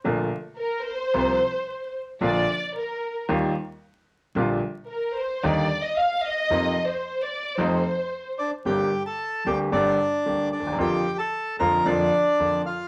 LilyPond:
<<
  \new Staff \with { instrumentName = "Bandoneon" } { \time 4/4 \key bes \major \tempo 4 = 112 r1 | r1 | r1 | r2. r8 <d' d''>8 |
\key g \minor <g' g''>8. <a' a''>8. <g' g''>8 <d' d''>4. <d' d''>8 | <g' g''>8. <a' a''>8. <bes' bes''>8 <d' d''>4. <f' f''>8 | }
  \new Staff \with { instrumentName = "Violin section" } { \time 4/4 \key bes \major r4 bes'8 c''2 r8 | d''4 bes'4 r2 | r4 bes'8 c''8 d''8. ees''16 f''8 ees''8~ | \tuplet 3/2 { ees''4 c''8~ c''8 d''4 } c''4. r8 |
\key g \minor r1 | r1 | }
  \new Staff \with { instrumentName = "Upright piano" } { \clef bass \time 4/4 \key bes \major <bes,, bes, d a bes f'>8 r4. <c, c f bes f'>8 r4. | <bes,, bes, d f bes f'>8 r4. <ees, ees g bes f'>8 r4. | <bes,, bes, d g bes f'>8 r4. <ees, d ees g bes ees'>8 r4. | <f, c f bes ees'>8 r4. <f, c f a ees'>8 r4. |
\key g \minor <g,, g, d g bes g'>8 r4 <d, d g bes g'>8 <g,, g, d g bes g'>8 r8 <d, d g bes g'>8 r32 d,32 ees,32 e,32 | <f, d f bes f'>8 r4 <f, d f bes f'>8 <f, d f bes f'>8 r8 <f, d f bes f'>8 r8 | }
  \new Staff \with { instrumentName = "Upright bass" } { \clef bass \time 4/4 \key bes \major bes,,16. r4. r32 c,16. r4. r32 | bes,,16. r4. r32 ees,16. r4. r32 | bes,,16. r4. r32 ees,16. r4. r32 | f,16. r4. r32 f,16. r4. r32 |
\key g \minor g,,16. r4 r32 d,16. r32 g,,16. r8 r32 d,16. r16 d,32 ees,32 e,32 | f,16. r4 r32 f,16. r32 f,16. r8 r32 f,16. r8 r32 | }
>>